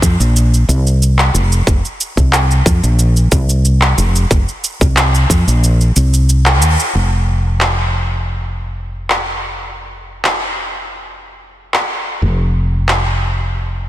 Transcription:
0.02 fretless electric bass F2, kick, shaker
0.20 fretless electric bass A#1, shaker
0.36 shaker
0.54 shaker
0.69 fretless electric bass C2, shaker
0.87 shaker
1.02 shaker
1.19 clap, shaker
1.34 fretless electric bass F1, shaker
1.52 shaker
1.67 fretless electric bass F1, kick, shaker
1.85 shaker
2.01 shaker
2.17 fretless electric bass C2, kick, shaker
2.33 clap, shaker
2.51 shaker
2.66 fretless electric bass F2, kick, shaker
2.83 fretless electric bass A#1, shaker
2.99 shaker
3.16 shaker
3.32 fretless electric bass C2, kick, shaker
3.49 shaker
3.65 shaker
3.82 clap, shaker
3.98 fretless electric bass F1, shaker
4.16 shaker
4.31 fretless electric bass F1, kick, shaker
4.48 shaker
4.64 shaker
4.81 fretless electric bass C2, kick, shaker
4.97 clap, shaker
5.15 shaker
5.30 fretless electric bass F2, kick, shaker
5.47 fretless electric bass A#1, shaker
5.64 shaker
5.81 shaker
5.96 fretless electric bass C2, shaker
6.14 shaker
6.29 shaker
6.46 clap, shaker
6.62 fretless electric bass D#2, shaker
6.80 shaker
6.95 fretless electric bass F1
7.61 clap
9.10 clap
10.25 clap
11.74 clap
12.22 fretless electric bass F1
12.89 clap

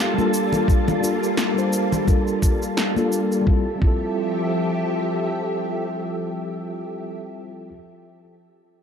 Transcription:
Already playing: string machine G3 A#3 F4 A4, synth texture A5
0.00 shaker
0.14 tine electric piano G3 A#3
0.18 tine electric piano D4 F4 A4, high conga, shaker
0.34 shaker
0.52 low conga, shaker
0.68 kick, shaker
0.88 high conga, low conga, shaker
1.00 tine electric piano G3 A#3 D4 F4, shaker
1.05 tine electric piano A4
1.23 shaker
1.37 snare, shaker
1.54 tine electric piano G3 A#3 D4 F4
1.58 tine electric piano C5, shaker
1.73 shaker
1.92 low conga, shaker
2.05 tine electric piano G3 A#3 D4 F4, kick, high conga, shaker
2.09 tine electric piano A4
2.28 shaker
2.42 kick, shaker
2.62 shaker
2.77 snare, shaker
2.95 tine electric piano G3 A#3 D4 F4 A4, high conga, shaker
3.12 shaker
3.32 shaker
3.41 tine electric piano G3 C4
3.46 string machine F3 G4 A4 E5, tine electric piano E4, kick
3.50 tine electric piano F4 A4
3.76 tine electric piano G3 C4
3.81 tine electric piano E4 F4, kick
3.87 tine electric piano A4

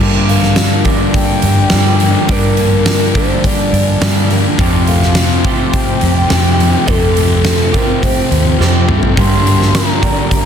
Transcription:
Already playing: clean electric guitar G2
0.00 fingered electric bass G2, distorted electric guitar G2 D3 G3, clean electric guitar D3 G3 A#3 D4 G4, twelve-string acoustic guitar A#3
0.27 twelve-string acoustic guitar A#3, soft synth lead F5, open hi-hat
0.43 snare
0.56 twelve-string acoustic guitar A#3, snare, open hi-hat
0.84 clean electric guitar G2 D3 G3 A#3 D4 G4, twelve-string acoustic guitar D4, kick, open hi-hat
1.13 twelve-string acoustic guitar G4, soft synth lead G5, kick, open hi-hat
1.42 fingered electric bass G2, twelve-string acoustic guitar D4, open hi-hat
1.70 clean electric guitar G2 D3 G3 A#3 D4 G4, fingered electric bass G2, twelve-string acoustic guitar G4, snare, open hi-hat
2.00 distorted electric guitar G2 D3 G3, twelve-string acoustic guitar A#3, open hi-hat
2.28 clean electric guitar G2 D3 G3 A#3 D4 G4, fingered electric bass G2, distorted electric guitar G2 D3, twelve-string acoustic guitar A#3, soft synth lead A#4, kick, open hi-hat
2.32 distorted electric guitar G3
2.57 twelve-string acoustic guitar A#3, open hi-hat
2.86 twelve-string acoustic guitar A#3, snare, open hi-hat
3.15 clean electric guitar G2 D3 G3 A#3 D4 G4, twelve-string acoustic guitar D4, soft synth lead C5, kick, open hi-hat
3.44 twelve-string acoustic guitar G4, soft synth lead D5, kick, open hi-hat
3.73 fingered electric bass G2, twelve-string acoustic guitar D4, open hi-hat
4.01 clean electric guitar G2 D3 G3 A#3 D4 G4, fingered electric bass G2, twelve-string acoustic guitar G4, snare, open hi-hat
4.30 distorted electric guitar G2 D3 G3, twelve-string acoustic guitar A#3, open hi-hat
4.58 distorted electric guitar F2 C3 F3, fingered electric bass F2, clean electric guitar F3 A3 C4 G4, twelve-string acoustic guitar F3, kick, open hi-hat
4.87 twelve-string acoustic guitar A3, soft synth lead F5, open hi-hat
5.02 snare
5.15 twelve-string acoustic guitar F3, snare, open hi-hat
5.44 clean electric guitar F3 A3 C4 G4, twelve-string acoustic guitar C4, kick, open hi-hat
5.71 twelve-string acoustic guitar G4, soft synth lead G5, kick, open hi-hat
6.01 fingered electric bass F2, twelve-string acoustic guitar C4, open hi-hat
6.29 fingered electric bass F2, clean electric guitar F3 A3 C4 G4, twelve-string acoustic guitar G4, snare, open hi-hat
6.59 distorted electric guitar F2 C3 F3, twelve-string acoustic guitar A3, open hi-hat
6.86 distorted electric guitar F2 C3 F3, fingered electric bass F2, clean electric guitar F3 A3 C4 G4, twelve-string acoustic guitar F3, soft synth lead A4, kick, open hi-hat
7.17 twelve-string acoustic guitar A3, open hi-hat
7.45 twelve-string acoustic guitar F3, snare, open hi-hat
7.73 clean electric guitar F3 A3 C4 G4, twelve-string acoustic guitar C4, soft synth lead A#4, kick, open hi-hat
8.02 twelve-string acoustic guitar G4, soft synth lead C5, kick, open hi-hat
8.31 fingered electric bass D#2, twelve-string acoustic guitar C4, open hi-hat
8.58 fingered electric bass F2, clean electric guitar F3 A3 C4 G4, twelve-string acoustic guitar G4, snare
8.88 distorted electric guitar F2 C3 F3, fingered electric bass G2, twelve-string acoustic guitar A3, mid tom
9.03 floor tom
9.16 distorted electric guitar G2 D3 G3, clean electric guitar G2 D3 G3 A#3 D4 G4, fingered electric bass G2, twelve-string acoustic guitar A#3, soft synth lead C6, kick, open hi-hat
9.46 twelve-string acoustic guitar A#3, open hi-hat
9.62 snare
9.75 twelve-string acoustic guitar A#3, soft synth lead A#5, snare, open hi-hat
10.02 clean electric guitar G2 D3 G3 A#3 D4 G4, twelve-string acoustic guitar D4, kick, open hi-hat
10.31 twelve-string acoustic guitar G4, soft synth lead A#5, kick, open hi-hat

